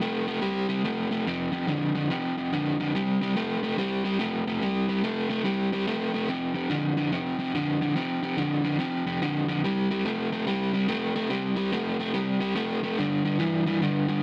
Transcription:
0.01 0.25 C3 medium
0.01 0.25 A3 medium
0.27 0.40 C3 medium
0.27 0.41 A3 medium
0.41 0.66 C3 medium
0.41 0.66 G3 medium
0.69 0.82 C3 medium
0.69 0.83 G3 medium
0.84 1.08 C3 medium
0.84 1.09 A3 medium
1.11 1.24 C3 medium
1.11 1.25 A3 medium
1.26 1.50 F2 medium
1.26 1.51 C3 medium
1.52 1.66 F2 medium
1.52 1.66 C3 medium
1.67 1.92 F2 medium
1.67 1.92 D3 medium
1.95 2.08 F2 medium
1.95 2.09 D3 medium
2.10 2.34 F2 medium
2.10 2.34 C3 medium
2.38 2.51 F2 medium
2.38 2.51 C3 medium
2.53 2.76 F2 medium
2.53 2.77 D3 medium
2.80 2.93 F2 medium
2.80 2.93 D3 medium
2.95 3.19 C3 medium
2.95 3.19 G3 medium
3.21 3.34 C3 medium
3.21 3.35 G3 medium
3.36 3.60 C3 medium
3.36 3.60 A3 medium
3.63 3.76 C3 medium
3.63 3.76 A3 medium
3.78 4.02 C3 medium
3.78 4.02 G3 medium
4.04 4.18 C3 medium
4.04 4.18 G3 medium
4.19 4.43 C3 medium
4.19 4.44 A3 medium
4.47 4.60 C3 medium
4.47 4.60 A3 medium
4.62 4.86 C3 medium
4.62 4.86 G3 medium
4.88 5.02 C3 medium
4.88 5.02 G3 medium
5.04 5.27 C3 medium
5.04 5.28 A3 loud
5.29 5.43 C3 medium
5.29 5.44 A3 medium
5.44 5.69 C3 medium
5.44 5.69 G3 medium
5.72 5.86 C3 medium
5.72 5.86 G3 medium
5.87 6.11 C3 medium
5.87 6.11 A3 medium
6.14 6.27 C3 medium
6.14 6.27 A3 medium
6.28 6.53 F2 medium
6.28 6.53 C3 medium
6.54 6.68 F2 medium
6.54 6.69 C3 medium
6.70 6.94 F2 medium
6.70 6.95 D3 medium
6.97 7.11 F2 medium
6.97 7.11 D3 medium
7.12 7.36 F2 medium
7.12 7.37 C3 medium
7.39 7.52 F2 medium
7.39 7.53 C3 medium
7.55 7.79 F2 medium
7.55 7.79 D3 medium
7.81 7.95 F2 medium
7.81 7.95 D3 medium
7.96 8.20 F2 medium
7.96 8.20 C3 medium
8.23 8.36 F2 medium
8.23 8.37 C3 medium
8.37 8.62 F2 medium
8.37 8.62 D3 medium
8.64 8.78 F2 medium
8.64 8.78 D3 medium
8.79 9.03 F2 medium
8.79 9.04 C3 medium
9.06 9.20 F2 medium
9.06 9.20 C3 medium
9.22 9.46 F2 medium
9.22 9.46 D3 loud
9.48 9.62 F2 medium
9.48 9.62 D3 medium
9.64 9.88 C3 medium
9.64 9.88 G3 medium
9.91 10.04 C3 medium
9.91 10.04 G3 medium
10.05 10.29 C3 medium
10.05 10.30 A3 medium
10.32 10.46 C3 medium
10.32 10.46 A3 medium
10.47 10.71 C3 medium
10.47 10.71 G3 medium
10.73 10.87 C3 medium
10.73 10.87 G3 medium
10.88 11.13 C3 medium
10.88 11.13 A3 medium
11.15 11.29 C3 medium
11.15 11.29 A3 medium
11.30 11.54 C3 medium
11.30 11.55 G3 medium
11.56 11.70 C3 medium
11.56 11.71 G3 medium
11.72 11.97 C3 medium
11.72 11.97 A3 medium
11.99 12.12 C3 medium
11.99 12.13 A3 medium
12.14 12.38 C3 medium
12.14 12.38 G3 medium
12.40 12.54 C3 medium
12.40 12.55 G3 medium
12.55 12.80 C3 medium
12.55 12.80 A3 medium
12.83 12.97 C3 medium
12.83 12.97 A3 medium
12.98 13.22 G2 medium
12.98 13.23 D3 medium
13.25 13.38 G2 medium
13.25 13.39 D3 medium
13.39 13.64 G2 medium
13.39 13.64 E3 medium
13.66 13.80 G2 medium
13.66 13.80 E3 medium
13.82 14.06 G2 medium
13.82 14.06 D3 medium
14.08 14.21 G2 medium
14.08 14.22 D3 medium

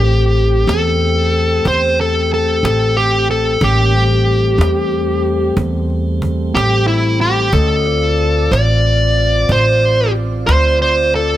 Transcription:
0.00 0.64 A1 medium
0.00 3.58 A3 medium
0.00 0.72 G4 medium
0.00 3.58 G4 medium
0.00 cajon slap soft
0.04 3.59 C4 medium
0.36 cajon slap soft
0.67 1.62 E2 medium
0.67 1.67 A4 medium
0.67 cajon slap medium
1.00 cajon slap soft
1.33 cajon slap soft
1.35 cajon slap soft
1.65 2.60 E2 medium
1.65 2.00 C5 loud
1.65 cajon bass medium
1.98 2.30 A4 medium
1.98 cajon slap soft
2.30 2.64 A4 medium
2.30 cajon slap soft
2.63 3.57 A1 medium
2.63 2.95 A4 medium
2.63 cajon slap medium
2.97 3.27 G4 medium
2.97 cajon slap soft
3.29 3.64 A4 medium
3.29 cajon slap soft
3.31 cajon slap soft
3.61 4.55 A1 medium
3.61 3.95 G#3 soft
3.61 3.94 A#3 soft
3.61 3.95 C#4 medium
3.61 5.54 G4 medium
3.61 cajon bass loud
3.94 7.50 G3 medium
3.94 7.50 A3 medium
3.94 7.50 C4 medium
3.94 cajon slap soft
4.27 cajon slap soft
4.58 5.53 E2 medium
4.58 cajon slap medium
4.92 cajon slap soft
5.24 cajon slap soft
5.26 cajon slap soft
5.57 6.51 E2 medium
5.57 cajon bass medium
5.90 cajon slap soft
6.22 cajon bass medium
6.55 7.49 A1 medium
6.55 6.87 G4 medium
6.55 cajon slap medium
6.88 7.21 E4 medium
6.88 cajon slap soft
7.20 7.51 G4 medium
7.20 cajon slap soft
7.53 8.47 D2 medium
7.53 7.86 C#4 medium
7.53 7.86 F#4 medium
7.53 8.54 A4 medium
7.53 7.86 D#5 medium
7.53 cajon bass medium
7.85 11.37 C4 medium
7.85 11.37 F4 medium
7.85 11.37 D5 medium
7.85 cajon slap soft
8.18 cajon slap soft
8.51 9.45 A1 medium
8.51 9.52 D5 medium
8.51 cajon slap medium
8.84 cajon slap soft
9.16 cajon slap soft
9.18 cajon slap soft
9.49 10.43 A1 medium
9.49 10.12 C5 medium
9.49 cajon bass medium
9.82 cajon slap soft
10.15 cajon slap soft
10.47 11.37 D2 medium
10.47 10.77 C5 medium
10.47 cajon slap loud
10.79 11.14 C5 medium
10.79 cajon slap soft
11.12 11.37 A4 medium
11.12 cajon slap soft

